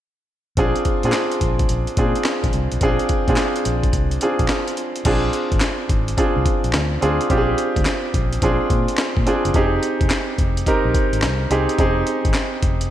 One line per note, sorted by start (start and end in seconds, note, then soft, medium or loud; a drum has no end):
0.57 0.72 A#1 loud
0.57 0.86 C4 medium
0.57 0.87 D4 medium
0.57 0.87 F4 medium
0.57 0.87 G#4 loud
0.57 kick loud
0.57 closed hi-hat medium
0.76 closed hi-hat soft
0.85 muted fingered electric bass stroke soft
0.85 kick medium
0.85 closed hi-hat medium
1.03 1.12 A#2 medium
1.03 1.68 C4 medium
1.03 1.68 D4 medium
1.03 1.68 F4 medium
1.03 1.68 G#4 medium
1.03 closed hi-hat soft
1.12 snare loud
1.12 clap medium
1.12 closed hi-hat medium
1.32 closed hi-hat medium
1.41 1.64 A#1 medium
1.41 kick medium
1.41 closed hi-hat medium
1.59 kick medium
1.59 closed hi-hat medium
1.69 1.85 A#1 medium
1.69 closed hi-hat medium
1.87 closed hi-hat soft
1.97 2.12 A#2 medium
1.97 2.56 C4 medium
1.97 2.56 D4 medium
1.97 2.56 F4 medium
1.97 2.56 G#4 medium
1.97 kick loud
1.97 closed hi-hat medium
2.15 closed hi-hat medium
2.25 snare loud
2.25 clap medium
2.25 closed hi-hat medium
2.44 2.52 A#1 medium
2.44 kick medium
2.44 closed hi-hat medium
2.53 2.69 C2 medium
2.53 closed hi-hat medium
2.72 2.80 B1 medium
2.72 closed hi-hat soft
2.81 2.96 A#1 loud
2.81 3.11 C4 medium
2.81 3.11 D4 medium
2.81 3.11 F4 medium
2.81 3.11 G#4 loud
2.81 kick loud
2.81 closed hi-hat medium
2.99 closed hi-hat soft
3.09 muted fingered electric bass stroke soft
3.09 kick medium
3.09 closed hi-hat medium
3.28 3.36 A#2 medium
3.28 3.92 C4 medium
3.28 3.92 D4 medium
3.28 3.92 F4 medium
3.28 3.92 G#4 medium
3.28 kick medium
3.28 closed hi-hat soft
3.36 snare loud
3.36 clap medium
3.36 closed hi-hat medium
3.56 closed hi-hat medium
3.65 3.89 A#1 medium
3.65 closed hi-hat medium
3.84 kick medium
3.84 closed hi-hat medium
3.93 4.17 C2 medium
3.93 kick medium
3.93 closed hi-hat medium
4.11 closed hi-hat soft
4.21 4.80 C4 medium
4.21 4.80 D4 medium
4.21 4.80 F4 medium
4.21 4.81 G#4 medium
4.21 closed hi-hat medium
4.39 4.48 A#1 medium
4.39 kick medium
4.39 closed hi-hat medium
4.48 snare loud
4.48 clap medium
4.48 closed hi-hat medium
4.68 closed hi-hat medium
4.77 closed hi-hat medium
4.96 closed hi-hat soft
5.05 5.29 A#1 loud
5.05 5.85 C4 medium
5.05 5.85 D4 medium
5.05 5.85 F4 medium
5.05 5.85 G#4 medium
5.05 kick loud
5.05 closed hi-hat medium
5.05 crash medium
5.33 closed hi-hat medium
5.52 5.60 G#1 medium
5.52 kick medium
5.52 closed hi-hat soft
5.61 snare loud
5.61 clap medium
5.61 closed hi-hat medium
5.89 6.13 G#1 medium
5.89 kick loud
5.89 closed hi-hat medium
6.08 closed hi-hat medium
6.17 6.76 C4 medium
6.17 6.76 D4 medium
6.17 6.76 F4 medium
6.17 6.76 G#4 medium
6.17 kick medium
6.17 closed hi-hat medium
6.36 6.44 C2 medium
6.46 kick loud
6.46 closed hi-hat medium
6.64 6.72 A#1 medium
6.64 closed hi-hat medium
6.73 6.97 D2 medium
6.73 snare loud
6.73 clap medium
6.73 closed hi-hat medium
7.01 7.17 D2 medium
7.01 7.24 C4 medium
7.01 7.24 D4 medium
7.01 7.24 F4 medium
7.01 7.24 G#4 medium
7.01 closed hi-hat medium
7.21 closed hi-hat soft
7.30 7.53 A#1 loud
7.30 8.09 C4 medium
7.30 8.09 D4 medium
7.30 8.10 F4 medium
7.30 7.39 G4 medium
7.30 kick loud
7.30 closed hi-hat medium
7.38 8.13 G#4 medium
7.58 closed hi-hat medium
7.76 7.85 D2 medium
7.76 kick medium
7.76 closed hi-hat soft
7.85 snare loud
7.85 clap medium
7.85 closed hi-hat medium
8.14 8.37 A#1 medium
8.14 kick medium
8.14 closed hi-hat medium
8.33 closed hi-hat medium
8.42 8.57 A#1 medium
8.42 9.01 C4 medium
8.42 9.01 D4 medium
8.42 9.01 F4 medium
8.42 9.01 G#4 medium
8.42 kick medium
8.42 closed hi-hat medium
8.70 8.85 A#2 medium
8.70 kick loud
8.70 closed hi-hat medium
8.88 closed hi-hat medium
8.98 snare loud
8.98 clap medium
8.98 closed hi-hat medium
9.17 9.25 A#2 medium
9.17 kick medium
9.26 9.48 C4 medium
9.26 9.48 D4 medium
9.26 9.48 F4 medium
9.26 9.49 G#4 medium
9.26 closed hi-hat medium
9.45 9.53 F#1 medium
9.45 closed hi-hat soft
9.54 9.77 F1 loud
9.54 10.34 C4 medium
9.54 10.34 D#4 medium
9.54 10.34 G4 medium
9.54 10.34 G#4 medium
9.54 kick loud
9.54 closed hi-hat medium
9.83 closed hi-hat medium
10.01 10.09 F1 medium
10.01 kick loud
10.01 closed hi-hat medium
10.10 snare loud
10.10 clap medium
10.10 closed hi-hat medium
10.38 10.62 F1 medium
10.38 kick medium
10.38 closed hi-hat medium
10.57 closed hi-hat medium
10.66 11.25 C4 medium
10.66 11.25 D#4 medium
10.66 11.25 G4 medium
10.66 11.25 A#4 medium
10.66 kick medium
10.66 closed hi-hat medium
10.85 10.93 A#1 medium
10.94 kick loud
10.94 closed hi-hat medium
11.13 11.24 G#1 medium
11.13 closed hi-hat medium
11.22 11.46 C2 medium
11.22 snare loud
11.22 clap medium
11.22 closed hi-hat medium
11.50 11.66 C2 medium
11.50 11.72 C4 medium
11.50 11.73 D#4 medium
11.50 11.73 G4 medium
11.50 11.73 G#4 medium
11.50 closed hi-hat medium
11.69 closed hi-hat soft
11.78 12.02 F1 loud
11.78 12.58 C4 medium
11.78 12.58 D#4 medium
11.78 12.58 G4 medium
11.78 12.58 G#4 loud
11.78 kick loud
11.78 closed hi-hat medium
12.07 closed hi-hat medium
12.25 12.33 G#1 medium
12.25 kick loud
12.25 closed hi-hat soft
12.34 snare loud
12.34 clap medium
12.34 closed hi-hat medium
12.63 12.86 F1 medium
12.63 kick medium
12.63 closed hi-hat medium
12.81 closed hi-hat medium